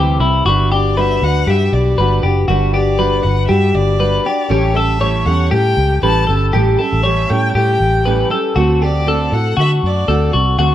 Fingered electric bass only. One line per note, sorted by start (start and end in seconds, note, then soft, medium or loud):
0.00 0.16 D2 medium
0.19 0.41 C2 medium
0.45 1.18 G1 loud
1.22 1.43 D2 medium
1.47 1.69 G2 medium
1.73 1.94 B1 medium
1.98 2.19 G1 medium
2.23 2.45 F#1 medium
2.48 3.21 G1 loud
3.24 3.46 G1 medium
3.50 3.71 G2 loud
3.75 4.18 G1 medium
4.50 5.23 A1 loud
5.26 5.48 E2 medium
5.52 5.74 A2 loud
5.77 5.99 C#2 medium
6.03 6.24 A1 medium
6.29 6.50 G1 medium
6.54 6.75 A1 medium
6.93 7.25 A1 medium
7.30 7.52 A2 medium
7.55 7.77 A2 medium
7.80 8.23 A1 medium
8.56 9.28 D2 loud
9.32 9.54 A2 medium
9.57 9.79 D3 medium
9.83 10.05 F#2 medium
10.08 10.30 D2 medium
10.34 10.55 C2 medium
10.58 10.75 D2 loud